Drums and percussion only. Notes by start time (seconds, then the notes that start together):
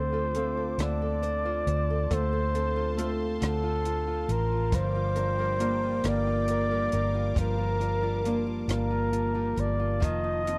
0.34 closed hi-hat
0.79 cross-stick, closed hi-hat
1.23 closed hi-hat
1.67 closed hi-hat
2.11 kick, closed hi-hat
2.55 closed hi-hat
2.98 closed hi-hat
3.42 cross-stick, closed hi-hat
3.85 closed hi-hat
4.29 closed hi-hat
4.72 kick, closed hi-hat
5.16 closed hi-hat
5.60 closed hi-hat
6.04 cross-stick, closed hi-hat
6.48 closed hi-hat
6.92 closed hi-hat
7.36 kick, closed hi-hat
7.81 closed hi-hat
8.25 closed hi-hat
8.69 cross-stick, closed hi-hat
9.13 closed hi-hat
9.57 closed hi-hat
10.02 kick, closed hi-hat
10.47 closed hi-hat